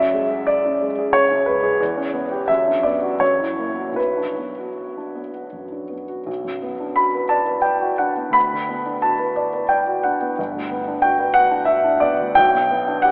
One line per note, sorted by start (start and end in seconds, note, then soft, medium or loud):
0.00 1.77 F#2 soft
0.00 0.24 C#4 soft
0.00 0.47 E5 medium
0.14 0.41 G#3 soft
0.31 0.85 G#4 soft
0.47 1.14 D5 medium
0.65 0.92 C#4 soft
0.81 1.08 G#3 soft
0.98 1.24 G#4 soft
1.13 1.40 C#3 soft
1.13 1.46 C#5 medium
1.31 1.57 C#4 soft
1.46 1.74 G#3 soft
1.46 1.80 B4 medium
1.63 1.80 G#4 soft
1.80 2.47 E2 medium
1.97 2.24 C#4 soft
2.14 2.42 B3 soft
2.32 2.49 G4 soft
2.48 3.19 F#2 soft
2.48 2.84 E5 medium
2.67 2.95 D4 soft
2.83 3.14 B3 soft
2.83 3.20 D5 medium
3.03 3.21 F#4 soft
3.20 3.95 F#2 soft
3.20 3.97 C#5 medium
3.40 3.70 E4 soft
3.58 3.89 A#3 soft
3.78 3.98 F#4 soft
3.92 6.21 B1 soft
3.96 5.92 B4 medium
4.17 4.49 D4 soft
4.38 4.69 B3 soft
4.58 5.20 F#4 soft
4.97 5.28 D4 soft
5.15 5.46 B3 soft
5.34 5.65 F#4 soft
5.52 5.83 F#2 soft
5.72 6.03 D4 soft
5.90 6.20 B3 soft
6.09 6.27 F#4 soft
6.26 8.30 B1 soft
6.44 6.73 F#2 soft
6.63 6.90 B3 soft
6.80 7.07 D4 soft
6.96 7.24 F#4 soft
6.96 7.30 B5 medium
7.15 7.41 B4 soft
7.29 7.57 D5 soft
7.29 7.63 A5 medium
7.46 7.74 B4 soft
7.62 7.91 D5 soft
7.62 7.98 G5 medium
7.81 8.10 F#4 soft
7.98 8.28 D4 soft
7.98 8.35 F#5 medium
8.17 8.35 B3 soft
8.30 10.32 D2 soft
8.30 9.03 B5 medium
8.53 8.80 D3 soft
8.69 8.96 B3 soft
8.86 9.13 D4 soft
9.02 9.30 F#4 soft
9.02 9.70 A5 medium
9.19 9.47 B4 soft
9.36 9.64 D5 soft
9.53 9.81 B4 soft
9.69 9.98 D5 soft
9.69 10.04 G5 medium
9.87 10.14 F#4 soft
10.03 10.32 D4 soft
10.03 10.38 F#5 medium
10.21 10.38 B3 soft
10.38 12.34 G1 medium
10.55 10.81 D2 soft
10.72 10.97 B3 soft
10.88 11.13 D4 soft
11.02 11.29 F#4 soft
11.02 11.34 G5 medium
11.20 11.45 B4 soft
11.34 11.61 F#4 soft
11.34 11.66 F#5 medium
11.51 11.77 D4 soft
11.65 11.94 F#4 soft
11.65 12.01 E5 medium
11.84 12.13 D4 soft
12.00 12.30 B3 soft
12.00 12.37 D5 medium
12.20 12.38 D2 soft
12.35 13.12 B1 medium
12.35 13.04 G5 medium
12.54 12.81 B2 soft
12.71 12.98 B3 soft
12.88 13.12 D4 soft
13.02 13.12 G4 soft
13.02 13.12 F#5 medium